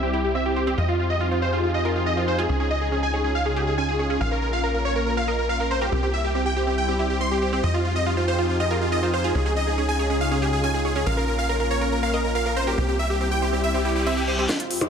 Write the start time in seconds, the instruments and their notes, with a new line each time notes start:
Already playing: analog synth bass C2, analog synth pad G3 C4 E4
0.03 synth pluck C4, supersaw synth G4
0.13 synth pluck E4, supersaw synth G4
0.24 supersaw synth G4
0.35 synth pluck C4, supersaw synth E5
0.46 synth pluck G4, supersaw synth G4
0.56 supersaw synth G4, synth pluck C5
0.67 synth pluck C4, supersaw synth G4
0.78 analog synth bass F2, analog synth pad F3 D#4 G4 G#4, synth pluck F4, supersaw synth D#5
0.89 synth pluck F4, supersaw synth F4
0.99 supersaw synth F4
1.10 supersaw synth D#5
1.21 synth pluck F4, supersaw synth F4
1.31 supersaw synth F4, synth pluck C5
1.42 supersaw synth C5, synth pluck F5
1.53 supersaw synth F4, synth pluck F4
1.63 supersaw synth F4
1.74 synth pluck F4, supersaw synth D#5
1.85 supersaw synth F4, synth pluck A#4
1.96 supersaw synth F4
2.06 synth pluck F4, supersaw synth D#5
2.17 supersaw synth F4, synth pluck C5
2.28 supersaw synth C5, synth pluck F5
2.38 synth pluck F4, supersaw synth G#4
2.49 analog synth bass C#2, analog synth pad C#3 C#4 F4, synth pluck C#4, supersaw synth G#4
2.60 synth pluck C#4, supersaw synth G#4
2.71 supersaw synth D#5
2.81 supersaw synth G#4
2.92 synth pluck C#4, supersaw synth G#4
3.03 synth pluck G#4, supersaw synth G#5
3.14 supersaw synth G#4, synth pluck C#5
3.24 synth pluck C#4, supersaw synth G#4
3.35 supersaw synth F5
3.46 synth pluck C#4, supersaw synth G#4
3.56 synth pluck G4, supersaw synth G#4
3.67 supersaw synth G#4
3.78 synth pluck C#4, supersaw synth G#5
3.89 supersaw synth G#4, synth pluck G#4
3.99 supersaw synth G#4, synth pluck C#5
4.10 synth pluck C#4, supersaw synth G#4
4.21 analog synth bass A#1, analog synth pad A#3, synth pluck A#4, supersaw synth F5
4.31 synth pluck A#4, supersaw synth A#4
4.42 supersaw synth A#4
4.53 supersaw synth F5
4.64 synth pluck A#4, supersaw synth A#4
4.74 supersaw synth A#4, synth pluck F5
4.85 supersaw synth C#5, synth pluck A#5
4.96 synth pluck A#4, supersaw synth A#4
5.06 supersaw synth A#4
5.17 synth pluck A#4, supersaw synth F5
5.28 supersaw synth A#4, synth pluck D#5
5.39 supersaw synth A#4
5.49 synth pluck A#4, supersaw synth F5
5.60 supersaw synth A#4, synth pluck F5
5.71 supersaw synth C5, synth pluck A#5
5.81 supersaw synth G4, synth pluck A#4
5.92 analog synth bass C2, analog synth pad G3 C4 E4, synth pluck C4, supersaw synth G4
6.03 synth pluck C4, supersaw synth G4
6.13 supersaw synth E5
6.24 supersaw synth G4
6.35 synth pluck C4, supersaw synth G4
6.46 synth pluck G4, supersaw synth G5
6.56 supersaw synth G4, synth pluck C5
6.67 synth pluck C4, supersaw synth G4
6.78 supersaw synth G5
6.88 synth pluck C4, supersaw synth G4
6.99 synth pluck E4, supersaw synth G4
7.10 supersaw synth G4
7.21 synth pluck C4, supersaw synth C6
7.31 supersaw synth G4, synth pluck G4
7.42 supersaw synth G4, synth pluck C5
7.53 synth pluck C4, supersaw synth G4
7.63 analog synth bass F2, analog synth pad F3 D#4 G4 G#4, synth pluck F4, supersaw synth D#5
7.74 supersaw synth F4, synth pluck F4
7.85 supersaw synth F4
7.96 supersaw synth D#5
8.06 synth pluck F4, supersaw synth F4
8.17 supersaw synth F4, synth pluck C5
8.28 supersaw synth C5, synth pluck F5
8.38 synth pluck F4, supersaw synth F4
8.49 supersaw synth F4
8.60 synth pluck F4, supersaw synth D#5
8.71 supersaw synth F4, synth pluck A#4
8.81 supersaw synth F4
8.92 synth pluck F4, supersaw synth D#5
9.03 supersaw synth F4, synth pluck C5
9.13 supersaw synth C5, synth pluck F5
9.24 synth pluck F4, supersaw synth G#4
9.35 analog synth bass C#2, analog synth pad C#3 C#4 F4, synth pluck C#4, supersaw synth G#4
9.46 synth pluck C#4, supersaw synth G#4
9.56 supersaw synth D#5
9.67 supersaw synth G#4
9.78 synth pluck C#4, supersaw synth G#4
9.89 synth pluck G#4, supersaw synth G#5
9.99 supersaw synth G#4, synth pluck C#5
10.10 synth pluck C#4, supersaw synth G#4
10.21 supersaw synth F5
10.31 synth pluck C#4, supersaw synth G#4
10.42 synth pluck G4, supersaw synth G#4
10.53 supersaw synth G#4
10.63 synth pluck C#4, supersaw synth G#5
10.74 supersaw synth G#4, synth pluck G#4
10.85 supersaw synth G#4, synth pluck C#5
10.96 synth pluck C#4, supersaw synth G#4
11.06 analog synth bass A#1, analog synth pad A#3 C#4, synth pluck A#4, supersaw synth F5
11.17 synth pluck A#4, supersaw synth A#4
11.28 supersaw synth A#4
11.38 supersaw synth F5
11.49 supersaw synth A#4, synth pluck A#4
11.60 supersaw synth A#4, synth pluck F5
11.71 supersaw synth C#5, synth pluck A#5
11.81 supersaw synth A#4, synth pluck A#4
11.92 supersaw synth A#4
12.03 synth pluck A#4, supersaw synth F5
12.14 supersaw synth A#4, synth pluck D#5
12.24 supersaw synth A#4
12.35 synth pluck A#4, supersaw synth F5
12.46 supersaw synth A#4, synth pluck F5
12.56 supersaw synth C5, synth pluck A#5
12.67 supersaw synth G4, synth pluck A#4
12.78 analog synth bass C2, analog synth pad G3 C4 E4, synth pluck C4, supersaw synth G4
12.89 synth pluck C4, supersaw synth G4
12.99 supersaw synth E5
13.10 supersaw synth G4
13.21 synth pluck C4, supersaw synth G4
13.31 synth pluck G4, supersaw synth G5
13.42 supersaw synth G4, synth pluck C5
13.53 synth pluck C4, supersaw synth G4
13.64 supersaw synth E5, reverse cymbal
13.74 synth pluck C4, supersaw synth G4
13.85 synth pluck E4, supersaw synth G4
13.96 supersaw synth G4
14.06 synth pluck C4, supersaw synth E5
14.17 synth pluck G4, supersaw synth G4
14.28 supersaw synth G4, synth pluck C5
14.38 synth pluck C4, supersaw synth G4
14.49 analog synth pad F2 F3 D#4 G4 G#4, synth pluck F4, supersaw synth C5 D#5, kick, snare, closed hi-hat, riser
14.60 supersaw synth F4, synth pluck F4, closed hi-hat
14.71 supersaw synth F4, open hi-hat
14.81 supersaw synth C5 D#5, closed hi-hat, percussion blips